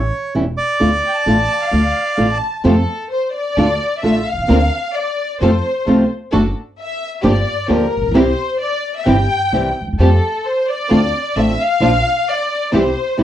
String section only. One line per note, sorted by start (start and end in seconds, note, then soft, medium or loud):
2.65 2.85 C4 medium
2.65 2.85 F4 medium
2.65 2.85 A4 medium
3.57 3.76 D4 medium
3.57 3.76 F4 medium
3.57 3.76 A4 medium
4.02 4.22 D4 soft
4.02 4.22 F4 soft
4.02 4.22 A4 medium
4.49 4.68 C4 medium
4.49 4.68 D4 medium
4.49 4.68 A#4 medium
5.41 5.59 C4 medium
5.41 5.60 F4 medium
5.41 5.60 A4 medium
5.86 6.05 C4 soft
5.86 6.05 F4 soft
5.86 6.05 A4 medium
6.32 6.50 D4 medium
6.32 6.51 F#4 medium
6.32 6.51 A4 medium
7.23 7.41 A#3 medium
7.23 7.42 F4 medium
7.23 7.41 G4 medium
7.68 7.87 A#3 medium
7.68 7.87 F4 soft
7.68 7.87 G4 medium
8.14 8.33 C4 medium
8.14 8.33 E4 medium
8.14 8.33 G4 medium
9.06 9.25 C4 medium
9.06 9.25 E4 medium
9.06 9.25 G4 medium
9.52 9.72 C4 soft
9.52 9.72 E4 soft
9.52 9.72 G4 soft
9.99 10.18 A3 medium
9.99 10.18 F4 medium
9.99 10.18 G4 medium
10.90 11.09 C4 medium
10.90 11.09 D4 medium
10.90 11.09 F4 medium
11.35 11.55 C4 soft
11.35 11.55 D4 soft
11.35 11.55 F4 medium
11.81 12.01 A#3 medium
11.81 12.01 D4 medium
11.81 12.01 F4 medium
12.72 12.92 C4 medium
12.72 12.92 E4 medium
12.72 12.92 G4 medium
13.17 13.23 C4 medium
13.17 13.23 E4 soft
13.17 13.23 G4 medium